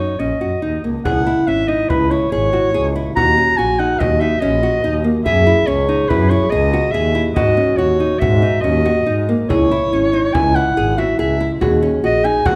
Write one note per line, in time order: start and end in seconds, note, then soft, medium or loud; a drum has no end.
0.00 0.16 D#4 medium
0.00 0.21 C#5 medium
0.19 0.36 A#1 medium
0.19 0.38 C#4 medium
0.19 0.84 D#5 medium
0.41 0.60 F#2 medium
0.41 0.59 F#4 medium
0.62 0.82 D#2 medium
0.62 0.81 D#4 medium
0.84 1.04 C#2 medium
0.84 1.02 A#3 medium
1.05 1.38 C#2 medium
1.05 3.24 E4 medium
1.05 1.23 G#4 medium
1.05 1.49 F#5 medium
1.05 frame drum medium
1.27 1.45 E4 medium
1.48 1.80 G#1 medium
1.48 1.66 C#4 medium
1.48 1.70 E5 medium
1.68 1.87 D#4 medium
1.68 1.91 D#5 medium
1.89 2.23 C#2 medium
1.89 2.08 E4 medium
1.89 2.12 B4 medium
1.89 frame drum medium
2.11 2.29 E4 medium
2.11 2.31 C#5 medium
2.11 frame drum soft
2.32 2.65 G#1 medium
2.32 2.50 G#4 medium
2.32 2.92 C#5 medium
2.53 2.71 F#4 medium
2.53 frame drum soft
2.74 3.07 C#2 medium
2.74 2.92 G#4 medium
2.96 3.14 E4 medium
3.16 3.49 D#2 medium
3.16 5.32 F#4 medium
3.16 3.35 F#4 medium
3.16 3.59 A#5 loud
3.16 frame drum medium
3.37 3.55 C#4 medium
3.57 3.91 A#1 medium
3.57 3.76 F#4 medium
3.57 3.81 G#5 medium
3.79 3.97 D#4 medium
3.79 4.01 F#5 medium
3.99 4.33 D#2 medium
3.99 4.18 F#4 medium
3.99 4.22 D#5 medium
3.99 frame drum medium
4.21 4.39 D#4 medium
4.21 4.42 E5 medium
4.40 4.74 A#1 medium
4.40 4.60 C#4 medium
4.40 5.04 D#5 medium
4.63 4.81 F#4 medium
4.84 5.16 D#2 medium
4.84 5.02 D#4 medium
5.04 5.22 A#3 medium
5.25 5.58 F#2 medium
5.25 5.44 G#4 medium
5.25 7.43 G#4 medium
5.25 5.68 E5 medium
5.25 frame drum soft
5.47 5.65 E4 medium
5.67 6.00 C#2 medium
5.67 5.86 C#4 medium
5.67 6.10 C#5 medium
5.89 6.07 D#4 medium
6.08 6.42 F#2 loud
6.08 6.28 E4 medium
6.08 6.31 B4 medium
6.08 frame drum medium
6.30 6.49 E4 medium
6.30 6.52 C#5 medium
6.30 frame drum soft
6.50 6.85 C#2 medium
6.50 6.70 G#4 medium
6.50 6.93 D#5 medium
6.73 6.91 F#4 medium
6.73 frame drum soft
6.92 7.27 D#2 medium
6.92 7.12 G#4 medium
6.92 7.25 E5 medium
7.15 7.33 E4 medium
7.35 7.69 G#2 medium
7.35 9.24 F#4 medium
7.35 7.54 F#4 medium
7.35 7.78 D#5 medium
7.35 frame drum medium
7.57 7.75 C#4 medium
7.77 8.11 D#2 medium
7.77 7.97 F#4 medium
7.77 8.21 C#5 medium
8.00 8.18 D#4 medium
8.00 frame drum soft
8.19 8.54 G#2 loud
8.19 8.39 F#4 medium
8.19 8.63 E5 medium
8.19 frame drum medium
8.42 8.61 D#4 medium
8.61 8.97 D#2 medium
8.61 8.82 C#4 medium
8.61 9.27 D#5 medium
8.85 9.04 F#4 medium
8.85 frame drum medium
9.06 9.39 G#2 medium
9.06 9.25 D#4 medium
9.29 9.47 A#3 medium
9.29 frame drum soft
9.49 9.82 C#2 medium
9.49 11.57 E4 medium
9.49 9.68 G#4 medium
9.49 10.35 C#5 medium
9.49 frame drum medium
9.71 9.89 E4 medium
9.92 10.25 G#1 medium
9.92 10.11 C#4 medium
10.13 10.31 D#4 medium
10.34 10.67 C#2 medium
10.34 10.53 E4 medium
10.34 10.57 G#5 medium
10.34 frame drum medium
10.55 10.74 E4 medium
10.55 11.00 F#5 medium
10.55 frame drum soft
10.77 11.10 G#1 medium
10.77 10.95 G#4 medium
10.98 11.16 F#4 medium
10.98 11.19 E5 medium
10.98 frame drum medium
11.19 11.52 C#2 medium
11.19 11.37 G#4 medium
11.19 11.49 E5 medium
11.40 11.58 E4 medium
11.61 11.94 D#2 medium
11.61 11.79 F#4 medium
11.61 12.55 G#4 medium
11.61 frame drum medium
11.82 12.00 C#4 medium
12.03 12.35 A#1 medium
12.03 12.21 F#4 medium
12.03 12.27 D#5 medium
12.24 12.42 D#4 medium
12.24 12.48 G#5 medium
12.45 12.55 D#2 loud
12.45 12.55 F#4 medium
12.45 12.55 F#5 medium
12.45 frame drum medium